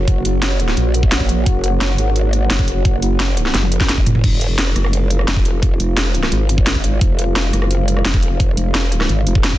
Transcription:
Already playing: wobble bass F#1, analog synth pad A#3 F#4 C#5 F#5
0.08 kick, closed hi-hat
0.25 wobble bass F#1, closed hi-hat
0.42 snare, closed hi-hat
0.60 closed hi-hat
0.68 snare
0.77 wobble bass A#1, closed hi-hat
0.94 closed hi-hat
1.03 kick
1.12 snare, closed hi-hat
1.20 kick
1.29 closed hi-hat
1.46 wobble bass F#1, kick, closed hi-hat
1.64 closed hi-hat
1.81 snare, closed hi-hat
1.98 wobble bass G#1, closed hi-hat
2.16 closed hi-hat
2.33 closed hi-hat
2.50 wobble bass F#1, snare, closed hi-hat
2.59 kick
2.68 closed hi-hat
2.85 kick, closed hi-hat
3.02 wobble bass F#1, closed hi-hat
3.20 snare, closed hi-hat
3.37 closed hi-hat
3.46 snare
3.54 wobble bass F#1, snare, closed hi-hat
3.63 high tom
3.72 closed hi-hat
3.80 kick, snare
3.89 snare, closed hi-hat
3.98 kick
4.06 wobble bass F#1, closed hi-hat, mid tom
4.15 mid tom
4.24 wobble bass F1, analog synth pad G#3 F4 C5 F5, kick, closed hi-hat, crash
4.41 closed hi-hat
4.58 snare, closed hi-hat
4.76 wobble bass F#1, cross-stick, closed hi-hat
4.85 cross-stick
4.93 closed hi-hat
5.11 closed hi-hat
5.19 cross-stick
5.28 wobble bass F1, snare, closed hi-hat
5.37 kick
5.45 closed hi-hat
5.63 kick, closed hi-hat
5.80 wobble bass F1, closed hi-hat
5.97 snare, closed hi-hat
6.15 closed hi-hat
6.23 cross-stick, snare
6.32 wobble bass G#1, closed hi-hat
6.49 closed hi-hat
6.58 kick
6.67 snare, closed hi-hat
6.75 kick
6.84 closed hi-hat
7.01 wobble bass F1, kick, closed hi-hat
7.19 closed hi-hat
7.36 snare, closed hi-hat
7.53 wobble bass F#1, cross-stick, closed hi-hat
7.62 cross-stick
7.71 closed hi-hat
7.88 closed hi-hat
7.97 cross-stick
8.05 wobble bass F1, snare, closed hi-hat
8.14 kick
8.23 closed hi-hat
8.40 kick, closed hi-hat
8.57 wobble bass F1, closed hi-hat
8.75 snare, closed hi-hat
8.92 closed hi-hat
9.01 cross-stick, snare
9.09 wobble bass G#1, closed hi-hat
9.27 wobble bass F1, closed hi-hat
9.35 kick
9.44 snare, closed hi-hat
9.53 kick

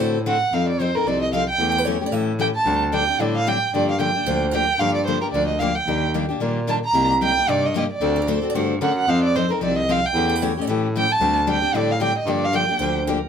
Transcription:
Already playing: steel-string acoustic guitar C5
0.00 baritone saxophone A2, steel-string acoustic guitar D3 A3 C4 F#4 A4
0.26 steel-string acoustic guitar D3 A3 C4 F#4 A4, violin F#5
0.52 baritone saxophone F2, steel-string acoustic guitar F3 C4 D#4 A4, violin F5
0.69 violin D5
0.80 steel-string acoustic guitar F3 C4 D#4 A4, violin C5
0.95 steel-string acoustic guitar C4 D#4 A4, violin A#4
1.05 baritone saxophone C2, steel-string acoustic guitar F3 C4 D#4 A4, violin D5
1.22 violin D#5
1.33 steel-string acoustic guitar F3 C4 D#4 A4, violin F5
1.50 violin G5
1.58 baritone saxophone E2, steel-string acoustic guitar E3 A3 C#4 G4
1.72 steel-string acoustic guitar A4
1.78 steel-string acoustic guitar B4
1.85 steel-string acoustic guitar E3 A3 C#4 G4 C#5
2.01 steel-string acoustic guitar A3 C#4 G4
2.06 steel-string acoustic guitar D5
2.11 baritone saxophone A2, steel-string acoustic guitar E3 A3 C#4 G4 E5
2.39 steel-string acoustic guitar E3 A3 C#4 G4, violin G5
2.55 violin A5
2.65 baritone saxophone D2, steel-string acoustic guitar D3 G3 C4 D4 G4
2.92 steel-string acoustic guitar D3 G3 C4 D4 G4, violin G5
3.07 steel-string acoustic guitar C4 D4 G4
3.19 baritone saxophone A2, steel-string acoustic guitar D3 G3 C4 D4 G4, violin D5
3.37 violin F5
3.47 steel-string acoustic guitar D3 G3 C4 D4 G4, violin G5
3.73 baritone saxophone G2, steel-string acoustic guitar D3 F3 A#3 D4 G4, violin D5
3.90 violin F5
3.99 steel-string acoustic guitar D3 F3 A#3 D4 G4, violin G5
4.14 steel-string acoustic guitar A#3 D4 G4
4.26 baritone saxophone D2, steel-string acoustic guitar D3 F3 A#3 D4 G4 C5
4.51 steel-string acoustic guitar D3 F3 A#3 D4 G4 A#4, violin G5
4.79 baritone saxophone G2, steel-string acoustic guitar D3 F3 A#3 D4 G4, violin F5
4.95 violin D5
5.06 steel-string acoustic guitar D3 F3 A#3 D4 G4, violin C5
5.21 steel-string acoustic guitar A#3 D4 G4, violin A#4
5.32 baritone saxophone D2, steel-string acoustic guitar D3 F3 A#3 D4 G4, violin D5
5.47 violin D#5
5.59 steel-string acoustic guitar D3 F3 A#3 D4 G4, violin F5
5.75 violin G5
5.86 baritone saxophone D#2, steel-string acoustic guitar D#3 G3 A#3 D4 G4
6.14 steel-string acoustic guitar D#3 G3 A#3 D4 G4
6.29 steel-string acoustic guitar A#3 D4 G4
6.40 baritone saxophone A#2, steel-string acoustic guitar D#3 G3 A#3 D4 G4
6.67 steel-string acoustic guitar D#3 G3 A#3 D4 G4, violin A5
6.85 violin A#5
6.94 baritone saxophone C2, steel-string acoustic guitar C3 G3 A#3 D#4 G4
7.21 steel-string acoustic guitar C3 G3 A#3 D#4 G4, violin G5
7.37 steel-string acoustic guitar A#3 D#4 G4
7.47 baritone saxophone G2, steel-string acoustic guitar C3 G3 A#3 D#4 G4, violin D5
7.66 violin D#5
7.74 steel-string acoustic guitar C3 G3 A#3 D#4 G4, violin D#5
7.92 violin D5
8.01 baritone saxophone D2, steel-string acoustic guitar D3 A3 C4 F#4 A4
8.16 steel-string acoustic guitar A4
8.22 steel-string acoustic guitar A#4
8.27 steel-string acoustic guitar D3 A3 C4 F#4 A4 C5
8.42 steel-string acoustic guitar C4 F#4 A4
8.50 baritone saxophone G2, steel-string acoustic guitar D5
8.54 steel-string acoustic guitar D3 A3 C4 F#4 A4 C5
8.81 baritone saxophone F#2, steel-string acoustic guitar D3 A3 C4 F#4 A4, violin F#5
8.98 violin F#5
9.07 baritone saxophone F2, steel-string acoustic guitar F3 C4 D#4 A4, violin F5
9.24 violin D5
9.35 steel-string acoustic guitar F3 C4 D#4 A4, violin C5
9.49 steel-string acoustic guitar C4 D#4 A4, violin A#4
9.61 baritone saxophone C2, steel-string acoustic guitar F3 C4 D#4 A4, violin D5
9.78 violin D#5
9.89 steel-string acoustic guitar F3 C4 D#4 A4, violin F5
10.06 violin G5
10.14 baritone saxophone E2, steel-string acoustic guitar E3 A3 C#4
10.18 steel-string acoustic guitar G4
10.29 steel-string acoustic guitar A4
10.36 steel-string acoustic guitar B4
10.42 steel-string acoustic guitar E3 A3 C#4 G4 C#5
10.57 steel-string acoustic guitar A3 C#4 G4
10.61 steel-string acoustic guitar D5
10.67 baritone saxophone A2, steel-string acoustic guitar E3 A3 C#4 G4 E5
10.96 steel-string acoustic guitar E3 A3 C#4 G4, violin G5
11.12 violin A5
11.20 baritone saxophone D2, steel-string acoustic guitar D3 G3 C4 D4 G4
11.47 steel-string acoustic guitar D3 G3 C4 D4 G4, violin G5
11.62 steel-string acoustic guitar C4 D4 G4
11.73 baritone saxophone A2, steel-string acoustic guitar D3 G3 C4 D4 G4, violin D5
11.91 violin F5
12.00 steel-string acoustic guitar D3 G3 C4 D4 G4, violin G5
12.18 violin D#5
12.25 baritone saxophone G2, steel-string acoustic guitar D3 F3 A#3 D4 G4
12.30 violin D5
12.44 violin F5
12.53 steel-string acoustic guitar D3 F3 A#3 D4 G4, violin G5
12.69 steel-string acoustic guitar A#3 D4 G4
12.79 baritone saxophone D2, steel-string acoustic guitar D3 F3 A#3 D4 G4 C5
13.07 steel-string acoustic guitar D3 F3 A#3 D4 G4 A#4

